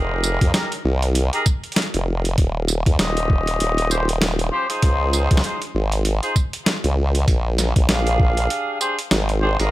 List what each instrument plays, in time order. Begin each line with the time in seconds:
Already playing: wobble bass F1, horn section D#4 G4 G#4 A#4
0.24 tambourine
0.41 wobble bass F2, kick, closed hi-hat
0.54 horn section D#4 G4 G#4 A#4, snare, closed hi-hat
0.72 closed hi-hat
0.85 wobble bass C2
1.02 closed hi-hat
1.15 closed hi-hat
1.33 horn section D#4 G4 G#4 A#4, closed hi-hat
1.46 kick, tambourine
1.64 closed hi-hat
1.72 closed hi-hat
1.76 snare, closed hi-hat
1.82 closed hi-hat
1.94 wobble bass F1, closed hi-hat
2.25 closed hi-hat
2.38 wobble bass D#1, kick, closed hi-hat
2.68 tambourine
2.86 wobble bass D#2, kick, closed hi-hat
2.99 wobble bass D#1, horn section C#4 F4 G4 D#5, snare, closed hi-hat
3.17 closed hi-hat
3.30 kick
3.47 closed hi-hat
3.60 wobble bass D#1, closed hi-hat
3.78 closed hi-hat
3.91 horn section C#4 F4 G4 C5, tambourine
4.09 closed hi-hat
4.22 snare, closed hi-hat
4.39 closed hi-hat
4.52 horn section C#4 F4 G4 C5
4.70 horn section D#4 F4 G#4 C5, closed hi-hat
4.82 wobble bass C#2, kick, closed hi-hat
5.13 tambourine
5.31 wobble bass C#2, kick, closed hi-hat
5.37 snare
5.44 horn section D#4 F4 G#4 C5, closed hi-hat
5.62 closed hi-hat
5.75 wobble bass G#1
5.92 closed hi-hat
6.05 closed hi-hat
6.23 horn section D#4 F4 G#4 C5, closed hi-hat
6.36 kick, tambourine
6.53 closed hi-hat
6.66 snare, closed hi-hat
6.84 wobble bass C#2, closed hi-hat
7.15 closed hi-hat
7.28 wobble bass A#1, kick, closed hi-hat
7.58 snare, tambourine
7.76 wobble bass A#1, kick, closed hi-hat
7.89 wobble bass A#1, horn section D4 G4 G#4 F5, snare, closed hi-hat
8.07 closed hi-hat
8.20 kick
8.37 closed hi-hat
8.50 closed hi-hat
8.81 horn section D4 G4 G#4 C5, tambourine
8.99 closed hi-hat
9.11 wobble bass G#1, snare, closed hi-hat
9.29 closed hi-hat
9.42 horn section D4 G4 G#4 C5
9.60 wobble bass G#1, horn section D#4 G4 G#4 A#4, closed hi-hat